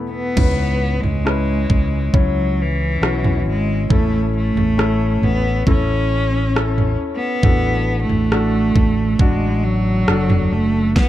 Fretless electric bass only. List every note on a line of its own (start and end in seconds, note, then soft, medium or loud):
0.37 1.00 C#2 medium
1.04 1.66 C#2 medium
1.70 2.11 C#2 medium
2.14 2.98 C#2 medium
3.02 3.43 B1 medium
3.46 3.87 G#1 medium
3.90 4.53 A1 medium
4.55 5.18 A1 medium
5.22 5.63 A1 medium
5.67 6.95 A1 medium
7.43 8.06 A1 medium
8.09 8.72 A1 medium
8.75 9.17 A1 medium
9.20 10.04 A1 loud
10.08 10.49 F#1 medium
10.52 10.94 F#1 medium